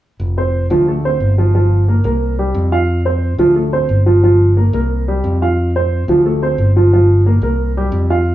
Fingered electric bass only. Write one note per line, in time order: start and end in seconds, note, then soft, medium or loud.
0.20 0.67 F1 medium
0.70 1.17 D2 medium
1.20 1.99 G1 medium
2.04 2.51 C2 medium
2.54 3.33 F2 medium
3.38 3.86 D2 medium
3.89 4.68 G1 medium
4.73 5.20 C2 medium
5.24 6.02 F2 medium
6.08 6.55 D2 medium
6.58 7.37 G1 medium
7.42 7.89 C2 medium
7.92 8.35 F2 medium